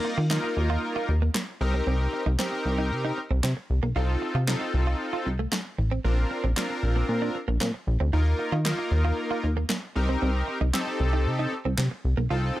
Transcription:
Already playing: analog polysynth A#3 D#4 F4 A#4
0.05 muted clean electric guitar stroke
0.18 analog synth bass D#3, clean electric guitar F4
0.30 analog polysynth A#3 D#4 F4 A#4, clean electric guitar D#4, snare, clap
0.44 muted clean electric guitar stroke
0.57 analog synth bass D#2
0.70 clean electric guitar F4
0.96 clean electric guitar F4
1.09 analog synth bass D#2, muted clean electric guitar stroke
1.22 clean electric guitar A#3
1.35 clean electric guitar A#3, snare, clap
1.61 analog synth bass C2, analog polysynth C4 D#4 G4 A#4, muted clean electric guitar stroke
1.74 clean electric guitar C4
1.87 analog synth bass C2, clean electric guitar C4
2.13 muted clean electric guitar stroke
2.26 analog synth bass C2, clean electric guitar D#4
2.39 analog polysynth C4 D#4 G4 A#4, clean electric guitar C4, snare, clap
2.53 muted clean electric guitar stroke
2.65 analog synth bass C2
2.78 clean electric guitar D#4
2.91 analog synth bass C3
3.05 clean electric guitar D#4
3.18 muted clean electric guitar stroke
3.31 analog synth bass C2, clean electric guitar C4
3.43 analog synth bass C3, clean electric guitar C4, snare, clap
3.57 muted clean electric guitar stroke
3.70 analog synth bass C2
3.83 analog synth bass B1, clean electric guitar A#3
3.96 analog synth bass C2, analog polysynth C4 D#4 F4 A4, clean electric guitar F4
4.22 muted clean electric guitar stroke
4.35 analog synth bass C3, clean electric guitar F4
4.48 analog polysynth C4 D#4 F4 A4, clean electric guitar D#4, snare, clap
4.61 muted clean electric guitar stroke
4.74 analog synth bass C2
4.87 clean electric guitar F4
5.13 clean electric guitar F4
5.26 analog synth bass C2, muted clean electric guitar stroke
5.39 clean electric guitar A3
5.52 clean electric guitar A3, snare, clap
5.78 analog synth bass A1, muted clean electric guitar stroke
5.91 clean electric guitar C4
6.04 analog synth bass A#1, clean electric guitar A#3, analog polysynth C4 D4 F4 A#4
6.31 muted clean electric guitar stroke
6.44 analog synth bass A#1, clean electric guitar C4
6.57 clean electric guitar A#3, analog polysynth C4 D4 F4 A#4, snare, clap
6.70 muted clean electric guitar stroke
6.83 analog synth bass A#1
6.96 clean electric guitar A#3
7.09 analog synth bass A#2
7.22 clean electric guitar D4
7.35 muted clean electric guitar stroke
7.48 analog synth bass A#1, clean electric guitar A#3
7.61 analog synth bass A#2, clean electric guitar C4, snare, clap
7.74 muted clean electric guitar stroke
7.87 analog synth bass A#1
8.00 analog synth bass D2, clean electric guitar C4
8.13 analog synth bass D#2, analog polysynth A#3 D#4 F4 A#4, clean electric guitar D#4
8.39 muted clean electric guitar stroke
8.52 analog synth bass D#3, clean electric guitar F4
8.65 analog polysynth A#3 D#4 F4 A#4, clean electric guitar D#4, snare, clap
8.79 muted clean electric guitar stroke
8.91 analog synth bass D#2
9.05 clean electric guitar F4
9.31 clean electric guitar F4
9.44 analog synth bass D#2, muted clean electric guitar stroke
9.57 clean electric guitar A#3
9.69 clean electric guitar A#3, snare, clap
9.96 analog synth bass C2, analog polysynth C4 D#4 G4 A#4, muted clean electric guitar stroke
10.09 clean electric guitar C4
10.22 analog synth bass C2, clean electric guitar C4
10.48 muted clean electric guitar stroke
10.61 analog synth bass C2, clean electric guitar D#4
10.74 analog polysynth C4 D#4 G4 A4, clean electric guitar C4, snare, clap
10.87 muted clean electric guitar stroke
11.00 analog synth bass C2
11.13 clean electric guitar D#4
11.26 analog synth bass C3
11.39 clean electric guitar D#4
11.52 muted clean electric guitar stroke
11.65 analog synth bass C2, clean electric guitar C4
11.78 analog synth bass C3, clean electric guitar C4, snare, clap
11.91 muted clean electric guitar stroke
12.05 analog synth bass C2
12.17 analog synth bass B1, clean electric guitar A#3
12.30 analog synth bass C2, analog polysynth C4 D#4 F4 A4, clean electric guitar F4
12.57 muted clean electric guitar stroke

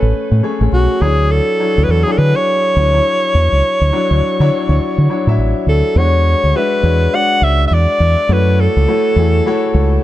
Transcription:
Already playing: grand piano A3 C#4 G#4 B4 C5 C#5 G#5, alto saxophone A4
0.02 fingered electric bass A1
0.32 fingered electric bass A2
0.43 grand piano A3 C#4 G#4 C#5
0.61 fingered electric bass A1, grand piano A3 C#4 G#4 C#5
0.72 fingered electric bass B1, alto saxophone F#4
1.01 fingered electric bass D2, grand piano F#3 D4 E4 C#5, alto saxophone G#4
1.31 alto saxophone A4
1.60 grand piano F#3 D4 E4 C#5
1.78 fingered electric bass D2
1.84 alto saxophone B4
1.89 fingered electric bass E2, alto saxophone A4
2.03 grand piano F#3, alto saxophone G#4
2.07 grand piano D4 E4 G#4
2.12 alto saxophone A4
2.18 fingered electric bass D3, alto saxophone B4
2.36 alto saxophone C#5
2.76 fingered electric bass D2, grand piano F#3 D4 E4 C#5
2.94 grand piano F#3 D4 E4 C#5
3.35 fingered electric bass E2
3.52 fingered electric bass C#2
3.81 fingered electric bass D2
3.93 grand piano F#3 D4 E4 C#5
4.11 fingered electric bass D2
4.40 fingered electric bass D3, grand piano F#3 D4 E4 C#5
4.69 fingered electric bass D2
4.80 muted fingered electric bass stroke
4.98 fingered electric bass D3
5.09 grand piano F#3 D4 E4 C#5
5.27 fingered electric bass A2, grand piano F#3 D4 E4 E5
5.38 fingered electric bass A1
5.67 fingered electric bass D2, alto saxophone A4
5.96 fingered electric bass E2, grand piano G#3 D4 F#4 C#5, alto saxophone C#5
6.44 fingered electric bass D2
6.55 grand piano G#3 D4 F#4 E5, alto saxophone B4
6.83 fingered electric bass E2, grand piano G#3 D4 F#4 C#5
7.13 grand piano G#3 D4 F#4 D5, alto saxophone F#5
7.42 fingered electric bass C#2, alto saxophone E5
7.67 fingered electric bass E2, alto saxophone E5
7.74 alto saxophone D5
8.00 fingered electric bass E2
8.29 fingered electric bass F#2, grand piano A3 E4 F#4 C#5, alto saxophone B4
8.61 alto saxophone A4
8.77 fingered electric bass C#2
8.88 grand piano A3 E4 F#4 C#5
9.16 fingered electric bass E2, grand piano A3 E4 F#4 G#4
9.46 grand piano A3 E4 F#4 C#5
9.74 fingered electric bass C#2

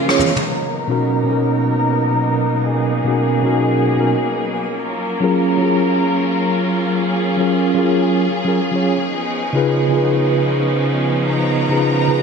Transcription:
Already playing: string section C#3 F3 G#3 A#3 F4
0.06 tine electric piano C#4 F4 G#4, cross-stick
0.11 tine electric piano C#5
0.19 high tom, high conga, cabasa
0.36 mid tom, cabasa
0.47 string section F#3 A#3 B3 D#4 A#4
0.88 tine electric piano B2 C#4 D#4 F#4 A#4
1.24 tine electric piano B2 C#4 D#4
1.30 tine electric piano F#4 A#4
2.64 string section G#4
3.04 tine electric piano B2 C#4 D#4 F#4 A#4
3.42 tine electric piano B2 C#4 D#4 F#4
3.46 tine electric piano A#4
3.96 tine electric piano B2 C#4 D#4 F#4 A#4
4.79 string section C#4 F4 A#4
5.20 tine electric piano F#3 C#4 F4 G#4 A#4
5.57 tine electric piano F#3 C#4 F4
5.63 tine electric piano G#4 A#4
6.96 string section G#4
7.37 tine electric piano F#3 C#4 F4 G#4
7.41 tine electric piano A#4
7.74 tine electric piano F#3 C#4 F4 G#4
7.78 tine electric piano A#4
8.44 tine electric piano F#3 C#4 F4 G#4
8.49 tine electric piano A#4
8.71 tine electric piano F#3 C#4 F4 G#4
8.76 tine electric piano C#5
9.13 string section F3 B3 C#4 D#4
9.53 tine electric piano C#3 D#4 F4 G#4 B4
9.89 tine electric piano C#3 D#4 F4
9.95 tine electric piano G#4 B4
11.29 string section A#5
11.69 tine electric piano C#3 D#4 F4 G#4 B4
12.07 tine electric piano C#3 D#4 F4 G#4 B4

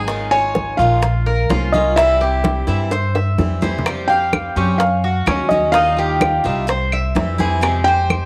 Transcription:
Already playing: upright bass G#1, cuban tres G#4
0.07 steel-string acoustic guitar C#3 D#3 G#3 D#4 F4, high bongo, high conga
0.31 steel-string acoustic guitar G#3 D#4 F4, cuban tres C#5, felt piano G#5, high conga
0.55 high bongo, high conga
0.77 upright bass A#1, steel-string acoustic guitar G#3 D#4 F4, cuban tres F4, felt piano F5, high conga
0.81 steel-string acoustic guitar D#3
1.02 muted steel-string acoustic guitar stroke, high bongo, high conga
1.26 cuban tres A#4, high conga
1.49 upright bass C2, steel-string acoustic guitar F3 A#3 C#4 F4, cuban tres F4, high bongo, low bongo, high conga
1.72 steel-string acoustic guitar A#3 C#4 F4, felt piano D#5, high conga
1.96 steel-string acoustic guitar C3 E3 G3 C4 E4, cuban tres E4, felt piano E5, high bongo, high conga
2.21 steel-string acoustic guitar G3 C4 E4, cuban tres G4, high bongo, high conga
2.44 high bongo, high conga
2.67 upright bass G2, steel-string acoustic guitar E3 G3 C4 E4, cuban tres E5, high bongo
2.91 cuban tres C5, muted steel-string acoustic guitar stroke, high bongo, high conga
3.15 cuban tres E5, high bongo, high conga
3.38 upright bass F2, steel-string acoustic guitar E3 G3 C4 E4, low bongo, high conga
3.62 steel-string acoustic guitar E3 G3 C4 E4, cuban tres C5, low bongo, high conga
3.78 low conga
3.86 steel-string acoustic guitar F3 G3 C4 G4, high bongo, high conga, claves
4.08 steel-string acoustic guitar C4 G4, cuban tres F5, felt piano G5, high conga
4.12 steel-string acoustic guitar G3
4.33 high bongo, high conga, claves
4.56 upright bass F#2, steel-string acoustic guitar G3 C4 G4, cuban tres C#4, high conga
4.78 felt piano F5, muted steel-string acoustic guitar stroke, high bongo, high conga
5.04 cuban tres F#4, high conga
5.26 upright bass D#2, steel-string acoustic guitar F#3 G#3 C#4 F#4, cuban tres C#4, high bongo, low bongo, high conga, claves
5.49 steel-string acoustic guitar G#3 C#4 F#4, felt piano D#5, high conga
5.72 steel-string acoustic guitar D#3 G3 D#4 F4, cuban tres D#4, felt piano F5, high bongo, high conga
5.97 steel-string acoustic guitar G3 D#4 F4, cuban tres G4, high bongo, high conga
6.21 high bongo, high conga, claves
6.44 upright bass C2, steel-string acoustic guitar G3 D#4 F4, cuban tres E5, high bongo
6.67 cuban tres C5, muted steel-string acoustic guitar stroke, high bongo, high conga
6.92 cuban tres E5, high conga, claves
7.15 upright bass F2, steel-string acoustic guitar E3 G3 C4 E4, high bongo, low bongo, high conga
7.38 steel-string acoustic guitar E3 G3 C4 E4, cuban tres G#4, high bongo, high conga
7.61 steel-string acoustic guitar C3 F3 G#3 C4 G4, high bongo, high conga, claves
7.84 steel-string acoustic guitar G#3 C4 G4, cuban tres C5, felt piano G5, high conga
8.10 high bongo, high conga, claves

